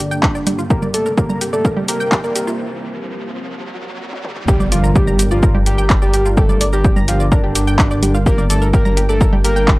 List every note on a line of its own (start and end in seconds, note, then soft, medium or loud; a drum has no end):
0.00 4.44 G2 medium
0.00 0.67 D3 medium
0.00 4.44 A#3 medium
0.00 0.61 D4 loud
0.00 riser medium
0.11 0.15 G5 loud
0.11 shaker soft
0.23 0.28 G4 medium
0.23 kick loud
0.23 clap loud
0.23 shaker soft
0.35 0.38 D5 medium
0.35 shaker soft
0.47 0.55 G4 medium
0.47 closed hi-hat loud
0.47 low conga medium
0.47 shaker medium
0.59 0.67 F4 medium
0.59 shaker soft
0.70 4.45 C3 medium
0.70 0.76 G4 loud
0.70 0.88 A#4 loud
0.70 kick loud
0.70 shaker soft
0.82 0.88 D5 medium
0.82 low conga medium
0.82 shaker soft
0.94 1.11 A4 loud
0.94 0.99 D5 medium
0.94 closed hi-hat loud
0.94 shaker medium
1.06 1.14 A#4 medium
1.06 shaker soft
1.18 1.23 G4 medium
1.18 1.44 A#4 medium
1.18 kick loud
1.18 shaker soft
1.29 1.35 A#5 medium
1.29 low conga medium
1.29 shaker soft
1.41 1.47 G4 medium
1.41 closed hi-hat loud
1.41 shaker medium
1.53 1.79 A4 medium
1.53 1.61 D5 medium
1.53 shaker soft
1.65 1.70 A#4 loud
1.65 kick loud
1.65 shaker soft
1.77 1.82 G4 medium
1.77 low conga medium
1.88 1.94 G4 medium
1.88 2.15 A#4 medium
1.88 closed hi-hat loud
1.88 shaker medium
2.00 2.03 G5 loud
2.00 shaker soft
2.12 2.17 G4 medium
2.12 kick loud
2.12 clap loud
2.12 shaker soft
2.24 2.50 A#4 loud
2.24 2.27 D5 medium
2.24 shaker soft
2.36 2.44 G4 medium
2.36 closed hi-hat loud
2.36 shaker medium
2.47 2.55 F4 medium
2.47 shaker soft
4.13 high tom medium
4.25 mid tom medium
4.36 mid tom medium
4.48 9.79 G1 medium
4.48 9.79 G3 medium
4.48 9.79 D4 medium
4.48 4.66 G4 loud
4.48 4.54 G4 loud
4.48 9.79 A#4 medium
4.48 4.54 G5 medium
4.48 kick loud
4.48 impact medium
4.48 shaker soft
4.60 4.65 D5 medium
4.60 4.65 D6 medium
4.60 low conga medium
4.60 shaker soft
4.72 4.89 F4 medium
4.72 4.77 D5 medium
4.72 4.77 D6 medium
4.72 closed hi-hat loud
4.72 shaker medium
4.84 4.92 A#4 medium
4.84 4.92 A#5 medium
4.84 shaker soft
4.95 5.01 G4 medium
4.95 5.22 G4 medium
4.95 5.01 G5 medium
4.95 kick loud
4.95 shaker soft
5.07 5.13 A#5 medium
5.07 5.13 A#6 medium
5.07 low conga medium
5.07 shaker soft
5.19 5.25 G4 medium
5.19 5.25 G5 medium
5.19 closed hi-hat loud
5.19 shaker medium
5.31 5.57 F4 medium
5.31 5.39 D5 medium
5.31 5.39 D6 medium
5.31 shaker soft
5.43 5.48 A#4 loud
5.43 5.48 A#5 medium
5.43 kick loud
5.43 shaker soft
5.55 5.60 G4 medium
5.55 5.60 G5 medium
5.55 low conga medium
5.66 5.72 G4 medium
5.66 5.93 G4 medium
5.66 5.72 G5 medium
5.66 closed hi-hat loud
5.66 shaker medium
5.78 5.81 G5 loud
5.78 5.81 G6 medium
5.78 shaker soft
5.90 5.95 G4 medium
5.90 5.95 G5 medium
5.90 kick loud
5.90 clap loud
5.90 shaker soft
6.02 6.28 G4 loud
6.02 6.05 D5 medium
6.02 6.05 D6 medium
6.02 shaker soft
6.14 6.22 G4 medium
6.14 6.22 G5 medium
6.14 closed hi-hat loud
6.14 shaker medium
6.25 6.34 F4 medium
6.25 6.34 F5 medium
6.25 shaker soft
6.37 6.43 G4 loud
6.37 6.64 A4 loud
6.37 6.43 G5 medium
6.37 kick loud
6.37 shaker soft
6.49 6.54 D5 medium
6.49 6.54 D6 medium
6.49 low conga medium
6.49 shaker soft
6.61 6.66 D5 medium
6.61 6.66 D6 medium
6.61 closed hi-hat loud
6.61 shaker medium
6.73 6.99 G4 loud
6.73 6.81 A#4 medium
6.73 6.81 A#5 medium
6.73 shaker soft
6.84 6.90 G4 medium
6.84 6.90 G5 medium
6.84 kick loud
6.84 shaker soft
6.96 7.02 A#5 medium
6.96 7.02 A#6 medium
6.96 low conga medium
6.96 shaker soft
7.08 7.26 F4 medium
7.08 7.13 G4 medium
7.08 7.14 G5 medium
7.08 closed hi-hat loud
7.08 shaker medium
7.20 7.28 D5 medium
7.20 7.28 D6 medium
7.20 shaker soft
7.32 8.17 D4 loud
7.32 7.37 A#4 loud
7.32 7.37 A#5 medium
7.32 kick loud
7.32 shaker soft
7.44 7.49 G4 medium
7.44 7.49 G5 medium
7.55 7.61 G4 medium
7.55 7.61 G5 medium
7.55 closed hi-hat loud
7.55 shaker medium
7.67 7.71 G5 loud
7.67 7.71 G6 medium
7.67 shaker soft
7.79 7.84 G4 medium
7.79 7.84 G5 medium
7.79 kick loud
7.79 clap loud
7.79 shaker soft
7.91 7.94 D5 medium
7.91 7.94 D6 medium
7.91 shaker soft
8.03 8.11 G4 medium
8.03 8.11 G5 medium
8.03 closed hi-hat loud
8.03 low conga medium
8.03 shaker medium
8.14 8.22 F4 medium
8.14 8.22 F5 medium
8.14 shaker soft
8.26 8.32 G4 loud
8.26 8.44 A#4 loud
8.26 8.32 G5 medium
8.26 kick loud
8.26 shaker soft
8.38 8.43 D5 medium
8.38 8.43 D6 medium
8.38 low conga medium
8.38 shaker soft
8.50 8.67 A4 medium
8.50 8.55 D5 medium
8.50 8.55 D6 medium
8.50 closed hi-hat loud
8.50 shaker medium
8.62 8.70 A#4 medium
8.62 8.70 A#5 medium
8.62 shaker soft
8.73 8.79 G4 medium
8.73 9.00 A#4 medium
8.73 8.79 G5 medium
8.73 kick loud
8.73 shaker soft
8.85 8.91 A#5 medium
8.85 8.91 A#6 medium
8.85 low conga medium
8.85 shaker soft
8.97 9.02 G4 medium
8.97 9.02 G5 medium
8.97 closed hi-hat loud
8.97 shaker medium
9.09 9.35 A4 medium
9.09 9.17 D5 medium
9.09 9.17 D6 medium
9.09 shaker soft
9.21 9.26 A#4 loud
9.21 9.26 A#5 medium
9.21 kick loud
9.21 shaker soft
9.33 9.38 G4 medium
9.33 9.38 G5 medium
9.33 low conga medium
9.44 9.50 G4 medium
9.44 9.71 A#4 loud
9.44 9.50 G5 medium
9.44 closed hi-hat loud
9.44 shaker medium
9.56 9.59 G5 loud
9.56 9.59 G6 medium
9.56 shaker soft
9.68 9.73 G4 medium
9.68 9.73 G5 medium
9.68 kick loud
9.68 clap loud
9.68 shaker soft